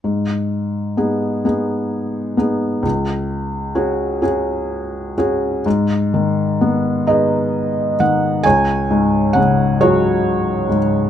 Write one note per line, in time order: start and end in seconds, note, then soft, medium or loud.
0.04 2.80 G#2 soft
0.97 1.43 B3 soft
0.97 1.44 D#4 soft
0.97 1.45 G#4 soft
1.45 2.36 B3 soft
1.45 2.36 D#4 soft
1.45 2.36 G#4 soft
2.37 2.82 B3 soft
2.37 2.83 D#4 soft
2.37 2.83 G#4 soft
2.83 5.61 C#2 medium
3.75 4.20 C#4 soft
3.75 4.21 F#4 soft
3.75 4.22 G#4 soft
4.22 5.14 C#4 soft
4.22 5.15 F#4 soft
4.22 5.15 G#4 soft
5.18 5.64 C#4 soft
5.18 5.64 F#4 soft
5.18 5.65 G#4 soft
5.66 8.41 G#2 soft
6.14 7.95 D#3 soft
6.61 8.41 B3 soft
7.07 8.40 D#4 soft
7.07 8.42 G#4 soft
7.07 8.42 B4 soft
7.07 8.02 D#5 medium
8.00 8.44 D#3 soft
8.00 8.42 F#5 medium
8.43 11.10 C#2 medium
8.43 9.77 C#5 medium
8.43 9.37 G#5 medium
8.91 10.67 G#2 soft
9.33 11.10 C#3 soft
9.33 9.76 F#5 medium
9.81 11.10 F#3 soft
9.81 11.10 F#4 soft
9.81 11.10 G#4 soft
9.81 10.78 C#5 medium
10.69 11.10 G#2 soft